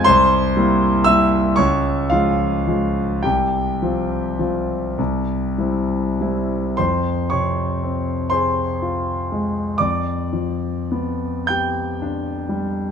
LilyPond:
<<
  \new Staff \with { instrumentName = "Grand piano" } { \time 12/8 \key f \minor \tempo 4. = 38 <c'' c'''>4 <e'' e'''>8 <des'' des'''>8 <f' f''>4 <g' g''>2~ <g' g''>8 r8 | <c'' c'''>8 <des'' des'''>4 <c'' c'''>4. <d'' d'''>4. <g'' g'''>4. | }
  \new Staff \with { instrumentName = "Grand piano" } { \clef bass \time 12/8 \key f \minor c,8 <g bes e'>8 <g bes e'>8 des,8 <f aes>8 <f aes f'>8 c,8 <f c' f'>8 <f c' f'>8 c,8 <g c' e'>8 <g c' e'>8 | f,8 c8 c'8 aes'8 f'8 aes8 f,8 f8 b8 g'8 d'8 g8 | }
>>